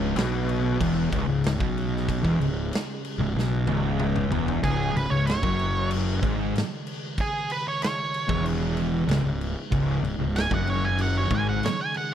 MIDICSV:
0, 0, Header, 1, 6, 480
1, 0, Start_track
1, 0, Key_signature, 4, "minor"
1, 0, Tempo, 636943
1, 1567, Time_signature, 4, 2, 24, 8
1, 3488, Key_signature, 4, "minor"
1, 9149, End_track
2, 0, Start_track
2, 0, Title_t, "Lead electric guitar"
2, 0, Program_c, 0, 29
2, 3495, Note_on_c, 0, 68, 96
2, 3725, Note_off_c, 0, 68, 0
2, 3743, Note_on_c, 0, 71, 79
2, 3844, Note_off_c, 0, 71, 0
2, 3844, Note_on_c, 0, 73, 90
2, 3963, Note_off_c, 0, 73, 0
2, 3970, Note_on_c, 0, 73, 94
2, 4435, Note_off_c, 0, 73, 0
2, 5433, Note_on_c, 0, 68, 94
2, 5653, Note_off_c, 0, 68, 0
2, 5665, Note_on_c, 0, 71, 99
2, 5772, Note_off_c, 0, 71, 0
2, 5789, Note_on_c, 0, 73, 84
2, 5894, Note_off_c, 0, 73, 0
2, 5903, Note_on_c, 0, 73, 92
2, 6360, Note_off_c, 0, 73, 0
2, 7810, Note_on_c, 0, 80, 110
2, 7923, Note_off_c, 0, 80, 0
2, 7944, Note_on_c, 0, 78, 94
2, 8050, Note_off_c, 0, 78, 0
2, 8062, Note_on_c, 0, 73, 90
2, 8169, Note_off_c, 0, 73, 0
2, 8174, Note_on_c, 0, 80, 81
2, 8284, Note_off_c, 0, 80, 0
2, 8302, Note_on_c, 0, 78, 87
2, 8409, Note_off_c, 0, 78, 0
2, 8421, Note_on_c, 0, 73, 89
2, 8528, Note_off_c, 0, 73, 0
2, 8551, Note_on_c, 0, 80, 90
2, 8653, Note_off_c, 0, 80, 0
2, 8658, Note_on_c, 0, 78, 78
2, 8766, Note_off_c, 0, 78, 0
2, 8776, Note_on_c, 0, 73, 86
2, 8885, Note_off_c, 0, 73, 0
2, 8900, Note_on_c, 0, 80, 96
2, 9007, Note_off_c, 0, 80, 0
2, 9023, Note_on_c, 0, 78, 73
2, 9129, Note_off_c, 0, 78, 0
2, 9149, End_track
3, 0, Start_track
3, 0, Title_t, "Synth drone"
3, 0, Program_c, 1, 95
3, 0, Note_on_c, 1, 49, 88
3, 0, Note_on_c, 1, 56, 82
3, 0, Note_on_c, 1, 61, 104
3, 3462, Note_off_c, 1, 49, 0
3, 3465, Note_off_c, 1, 56, 0
3, 3467, Note_off_c, 1, 61, 0
3, 3500, Note_on_c, 1, 49, 87
3, 3504, Note_on_c, 1, 56, 81
3, 3511, Note_on_c, 1, 51, 89
3, 9149, Note_off_c, 1, 49, 0
3, 9149, Note_off_c, 1, 51, 0
3, 9149, Note_off_c, 1, 56, 0
3, 9149, End_track
4, 0, Start_track
4, 0, Title_t, "Distorted electric guitar"
4, 0, Program_c, 2, 30
4, 0, Note_on_c, 2, 37, 108
4, 120, Note_off_c, 2, 37, 0
4, 120, Note_on_c, 2, 47, 106
4, 595, Note_off_c, 2, 47, 0
4, 606, Note_on_c, 2, 40, 117
4, 833, Note_off_c, 2, 40, 0
4, 836, Note_on_c, 2, 37, 114
4, 953, Note_off_c, 2, 37, 0
4, 961, Note_on_c, 2, 37, 75
4, 1156, Note_off_c, 2, 37, 0
4, 1196, Note_on_c, 2, 47, 108
4, 1675, Note_off_c, 2, 47, 0
4, 1678, Note_on_c, 2, 40, 107
4, 1795, Note_off_c, 2, 40, 0
4, 1812, Note_on_c, 2, 37, 74
4, 2002, Note_off_c, 2, 37, 0
4, 2405, Note_on_c, 2, 37, 73
4, 2527, Note_off_c, 2, 37, 0
4, 2533, Note_on_c, 2, 47, 114
4, 2764, Note_off_c, 2, 47, 0
4, 2773, Note_on_c, 2, 37, 100
4, 3244, Note_off_c, 2, 37, 0
4, 3259, Note_on_c, 2, 40, 99
4, 3487, Note_off_c, 2, 40, 0
4, 3494, Note_on_c, 2, 37, 100
4, 3724, Note_off_c, 2, 37, 0
4, 3742, Note_on_c, 2, 37, 72
4, 3848, Note_off_c, 2, 37, 0
4, 3857, Note_on_c, 2, 37, 76
4, 4045, Note_off_c, 2, 37, 0
4, 4097, Note_on_c, 2, 42, 95
4, 4685, Note_off_c, 2, 42, 0
4, 4689, Note_on_c, 2, 44, 101
4, 4921, Note_off_c, 2, 44, 0
4, 6241, Note_on_c, 2, 40, 96
4, 6835, Note_off_c, 2, 40, 0
4, 6847, Note_on_c, 2, 37, 103
4, 6948, Note_off_c, 2, 37, 0
4, 6957, Note_on_c, 2, 37, 82
4, 7152, Note_off_c, 2, 37, 0
4, 7323, Note_on_c, 2, 37, 109
4, 7556, Note_off_c, 2, 37, 0
4, 7565, Note_on_c, 2, 37, 73
4, 7677, Note_off_c, 2, 37, 0
4, 7686, Note_on_c, 2, 37, 77
4, 7876, Note_off_c, 2, 37, 0
4, 7925, Note_on_c, 2, 42, 94
4, 8516, Note_off_c, 2, 42, 0
4, 8524, Note_on_c, 2, 44, 113
4, 8755, Note_off_c, 2, 44, 0
4, 9149, End_track
5, 0, Start_track
5, 0, Title_t, "Fingered electric bass"
5, 0, Program_c, 3, 33
5, 0, Note_on_c, 3, 25, 106
5, 91, Note_off_c, 3, 25, 0
5, 120, Note_on_c, 3, 35, 96
5, 573, Note_off_c, 3, 35, 0
5, 601, Note_on_c, 3, 28, 102
5, 826, Note_off_c, 3, 28, 0
5, 841, Note_on_c, 3, 25, 105
5, 955, Note_off_c, 3, 25, 0
5, 958, Note_on_c, 3, 25, 81
5, 1185, Note_off_c, 3, 25, 0
5, 1206, Note_on_c, 3, 35, 106
5, 1657, Note_off_c, 3, 35, 0
5, 1690, Note_on_c, 3, 28, 91
5, 1801, Note_off_c, 3, 28, 0
5, 1807, Note_on_c, 3, 25, 83
5, 2031, Note_off_c, 3, 25, 0
5, 2398, Note_on_c, 3, 25, 82
5, 2510, Note_off_c, 3, 25, 0
5, 2515, Note_on_c, 3, 35, 104
5, 2744, Note_off_c, 3, 35, 0
5, 2762, Note_on_c, 3, 25, 103
5, 3215, Note_off_c, 3, 25, 0
5, 3237, Note_on_c, 3, 28, 92
5, 3466, Note_off_c, 3, 28, 0
5, 3489, Note_on_c, 3, 25, 103
5, 3712, Note_off_c, 3, 25, 0
5, 3728, Note_on_c, 3, 25, 80
5, 3840, Note_off_c, 3, 25, 0
5, 3847, Note_on_c, 3, 25, 74
5, 4071, Note_off_c, 3, 25, 0
5, 4089, Note_on_c, 3, 30, 97
5, 4659, Note_off_c, 3, 30, 0
5, 4688, Note_on_c, 3, 32, 93
5, 4911, Note_off_c, 3, 32, 0
5, 6245, Note_on_c, 3, 28, 95
5, 6814, Note_off_c, 3, 28, 0
5, 6839, Note_on_c, 3, 25, 100
5, 6953, Note_off_c, 3, 25, 0
5, 6964, Note_on_c, 3, 25, 86
5, 7187, Note_off_c, 3, 25, 0
5, 7324, Note_on_c, 3, 25, 102
5, 7547, Note_off_c, 3, 25, 0
5, 7558, Note_on_c, 3, 25, 84
5, 7672, Note_off_c, 3, 25, 0
5, 7675, Note_on_c, 3, 25, 78
5, 7902, Note_off_c, 3, 25, 0
5, 7917, Note_on_c, 3, 30, 98
5, 8489, Note_off_c, 3, 30, 0
5, 8518, Note_on_c, 3, 32, 92
5, 8743, Note_off_c, 3, 32, 0
5, 9149, End_track
6, 0, Start_track
6, 0, Title_t, "Drums"
6, 121, Note_on_c, 9, 49, 86
6, 141, Note_on_c, 9, 38, 118
6, 196, Note_off_c, 9, 49, 0
6, 216, Note_off_c, 9, 38, 0
6, 369, Note_on_c, 9, 49, 71
6, 444, Note_off_c, 9, 49, 0
6, 607, Note_on_c, 9, 36, 117
6, 609, Note_on_c, 9, 49, 100
6, 683, Note_off_c, 9, 36, 0
6, 684, Note_off_c, 9, 49, 0
6, 848, Note_on_c, 9, 36, 111
6, 851, Note_on_c, 9, 49, 70
6, 923, Note_off_c, 9, 36, 0
6, 926, Note_off_c, 9, 49, 0
6, 1085, Note_on_c, 9, 49, 86
6, 1105, Note_on_c, 9, 38, 124
6, 1160, Note_off_c, 9, 49, 0
6, 1180, Note_off_c, 9, 38, 0
6, 1209, Note_on_c, 9, 36, 108
6, 1285, Note_off_c, 9, 36, 0
6, 1338, Note_on_c, 9, 49, 69
6, 1413, Note_off_c, 9, 49, 0
6, 1482, Note_on_c, 9, 38, 31
6, 1557, Note_off_c, 9, 38, 0
6, 1572, Note_on_c, 9, 36, 110
6, 1577, Note_on_c, 9, 49, 84
6, 1647, Note_off_c, 9, 36, 0
6, 1653, Note_off_c, 9, 49, 0
6, 1692, Note_on_c, 9, 36, 88
6, 1767, Note_off_c, 9, 36, 0
6, 1818, Note_on_c, 9, 49, 70
6, 1894, Note_off_c, 9, 49, 0
6, 2056, Note_on_c, 9, 49, 82
6, 2076, Note_on_c, 9, 38, 114
6, 2131, Note_off_c, 9, 49, 0
6, 2151, Note_off_c, 9, 38, 0
6, 2295, Note_on_c, 9, 49, 65
6, 2370, Note_off_c, 9, 49, 0
6, 2555, Note_on_c, 9, 38, 72
6, 2630, Note_off_c, 9, 38, 0
6, 2768, Note_on_c, 9, 48, 89
6, 2844, Note_off_c, 9, 48, 0
6, 3011, Note_on_c, 9, 47, 93
6, 3087, Note_off_c, 9, 47, 0
6, 3133, Note_on_c, 9, 45, 93
6, 3208, Note_off_c, 9, 45, 0
6, 3254, Note_on_c, 9, 43, 109
6, 3329, Note_off_c, 9, 43, 0
6, 3378, Note_on_c, 9, 43, 95
6, 3453, Note_off_c, 9, 43, 0
6, 3494, Note_on_c, 9, 36, 104
6, 3502, Note_on_c, 9, 49, 83
6, 3570, Note_off_c, 9, 36, 0
6, 3577, Note_off_c, 9, 49, 0
6, 3741, Note_on_c, 9, 49, 65
6, 3817, Note_off_c, 9, 49, 0
6, 3972, Note_on_c, 9, 49, 77
6, 3992, Note_on_c, 9, 38, 99
6, 4047, Note_off_c, 9, 49, 0
6, 4068, Note_off_c, 9, 38, 0
6, 4092, Note_on_c, 9, 36, 118
6, 4168, Note_off_c, 9, 36, 0
6, 4214, Note_on_c, 9, 49, 62
6, 4289, Note_off_c, 9, 49, 0
6, 4451, Note_on_c, 9, 49, 94
6, 4526, Note_off_c, 9, 49, 0
6, 4694, Note_on_c, 9, 36, 100
6, 4702, Note_on_c, 9, 49, 62
6, 4769, Note_off_c, 9, 36, 0
6, 4777, Note_off_c, 9, 49, 0
6, 4940, Note_on_c, 9, 49, 81
6, 4960, Note_on_c, 9, 38, 106
6, 5015, Note_off_c, 9, 49, 0
6, 5035, Note_off_c, 9, 38, 0
6, 5174, Note_on_c, 9, 49, 71
6, 5250, Note_off_c, 9, 49, 0
6, 5411, Note_on_c, 9, 36, 97
6, 5412, Note_on_c, 9, 49, 81
6, 5486, Note_off_c, 9, 36, 0
6, 5487, Note_off_c, 9, 49, 0
6, 5650, Note_on_c, 9, 49, 67
6, 5725, Note_off_c, 9, 49, 0
6, 5892, Note_on_c, 9, 49, 76
6, 5912, Note_on_c, 9, 38, 103
6, 5967, Note_off_c, 9, 49, 0
6, 5987, Note_off_c, 9, 38, 0
6, 6135, Note_on_c, 9, 49, 61
6, 6210, Note_off_c, 9, 49, 0
6, 6249, Note_on_c, 9, 36, 114
6, 6324, Note_off_c, 9, 36, 0
6, 6372, Note_on_c, 9, 49, 83
6, 6448, Note_off_c, 9, 49, 0
6, 6607, Note_on_c, 9, 49, 59
6, 6683, Note_off_c, 9, 49, 0
6, 6848, Note_on_c, 9, 49, 75
6, 6869, Note_on_c, 9, 38, 112
6, 6924, Note_off_c, 9, 49, 0
6, 6944, Note_off_c, 9, 38, 0
6, 7092, Note_on_c, 9, 49, 66
6, 7167, Note_off_c, 9, 49, 0
6, 7325, Note_on_c, 9, 36, 107
6, 7327, Note_on_c, 9, 49, 78
6, 7401, Note_off_c, 9, 36, 0
6, 7403, Note_off_c, 9, 49, 0
6, 7569, Note_on_c, 9, 49, 61
6, 7645, Note_off_c, 9, 49, 0
6, 7806, Note_on_c, 9, 49, 80
6, 7826, Note_on_c, 9, 38, 100
6, 7881, Note_off_c, 9, 49, 0
6, 7902, Note_off_c, 9, 38, 0
6, 7921, Note_on_c, 9, 36, 112
6, 7996, Note_off_c, 9, 36, 0
6, 8044, Note_on_c, 9, 49, 64
6, 8119, Note_off_c, 9, 49, 0
6, 8278, Note_on_c, 9, 49, 86
6, 8353, Note_off_c, 9, 49, 0
6, 8521, Note_on_c, 9, 36, 111
6, 8523, Note_on_c, 9, 49, 67
6, 8597, Note_off_c, 9, 36, 0
6, 8598, Note_off_c, 9, 49, 0
6, 8765, Note_on_c, 9, 49, 78
6, 8785, Note_on_c, 9, 38, 111
6, 8840, Note_off_c, 9, 49, 0
6, 8860, Note_off_c, 9, 38, 0
6, 9000, Note_on_c, 9, 49, 70
6, 9075, Note_off_c, 9, 49, 0
6, 9149, End_track
0, 0, End_of_file